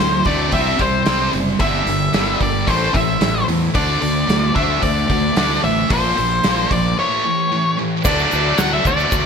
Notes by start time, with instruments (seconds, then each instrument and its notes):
Already playing: analog synth pad D3 C4 E4 F#4 D5, lead electric guitar C5
0.00 fingered electric bass D2, distorted electric guitar D3 F#3
0.25 fingered electric bass D2, distorted electric guitar D3 F#3 A3, lead electric guitar D5, kick, open hi-hat
0.52 fingered electric bass C2, distorted electric guitar C3 G3 C4, analog synth pad C3 C5, lead electric guitar E5, kick, open hi-hat
0.79 fingered electric bass C2, distorted electric guitar C3 G3, lead electric guitar C5, kick, open hi-hat
1.06 fingered electric bass C2, distorted electric guitar C3 G3 C4, snare, open hi-hat
1.33 fingered electric bass F#1, distorted electric guitar C3 G3, open hi-hat
1.59 fingered electric bass G1, distorted electric guitar G2 D3 G3, analog synth pad G3 G4 A4 A#4 D5, lead electric guitar E5, kick, open hi-hat
1.86 fingered electric bass G1, distorted electric guitar G2 D3, open hi-hat
2.13 fingered electric bass G1, distorted electric guitar G2 D3 G3, snare, open hi-hat
2.41 fingered electric bass G1, distorted electric guitar G2 D3, lead electric guitar D5, kick, open hi-hat
2.67 fingered electric bass A1, distorted electric guitar A2 E3 A3, analog synth pad E4 C5, lead electric guitar C5, kick, open hi-hat
2.94 fingered electric bass A1, distorted electric guitar A2 E3, lead electric guitar E5, kick, open hi-hat
3.21 fingered electric bass A1, distorted electric guitar A2 E3, snare, open hi-hat
3.48 fingered electric bass E2, distorted electric guitar A2 E3, open hi-hat
3.73 fingered electric bass D2, distorted electric guitar D3 A3 D4, analog synth pad D3 D4 F#4 C5 E5, lead electric guitar D5, kick, open hi-hat
4.01 fingered electric bass D2, distorted electric guitar D3 A3, open hi-hat
4.28 fingered electric bass D2, distorted electric guitar D3 A3, snare, open hi-hat
4.55 fingered electric bass D2, distorted electric guitar D3 A3 D4, lead electric guitar E5, kick, open hi-hat
4.82 fingered electric bass D2, distorted electric guitar D3 A3, lead electric guitar D5, kick, open hi-hat
5.10 fingered electric bass D2, distorted electric guitar D3 A3, kick, open hi-hat
5.36 fingered electric bass D2, distorted electric guitar D3 A3 D4, snare, open hi-hat
5.63 fingered electric bass A1, distorted electric guitar D3 A3, lead electric guitar E5, open hi-hat
5.88 fingered electric bass A#1, distorted electric guitar A#2 F3 A#3, analog synth pad A#3 F4 G4 C5 D5, lead electric guitar C5, kick, open hi-hat
6.17 fingered electric bass A#1, distorted electric guitar A#2 F3, open hi-hat
6.44 fingered electric bass A#1, distorted electric guitar A#2 F3 A#3, snare, open hi-hat
6.71 fingered electric bass A#1, distorted electric guitar A#2 F3, lead electric guitar D5, kick, open hi-hat
6.98 distorted electric guitar A2 E3 A3, analog synth pad A3 E4 G4 B4 C#5, lead electric guitar C#5
7.24 distorted electric guitar A2 E3
7.52 distorted electric guitar A2 E3
7.78 distorted electric guitar A2 E3
8.04 fingered electric bass D2, distorted electric guitar D3 F#3 A3 D4, analog synth pad F#4 C5 D5 A5, lead electric guitar D5, kick, crash, shaker
8.19 shaker
8.31 fingered electric bass D2, distorted electric guitar D3 F#3 A3 D4, crash, shaker
8.58 fingered electric bass D2, distorted electric guitar D3 F#3 A3, lead electric guitar F#5, snare, crash, shaker
8.62 distorted electric guitar D4
8.72 distorted electric guitar F#3 A3 D4, lead electric guitar E5
8.85 fingered electric bass D2, lead electric guitar D5, muted distorted electric guitar stroke, kick, crash, shaker
8.98 distorted electric guitar F#3 A3 D4, shaker
9.12 fingered electric bass D2, kick, crash, shaker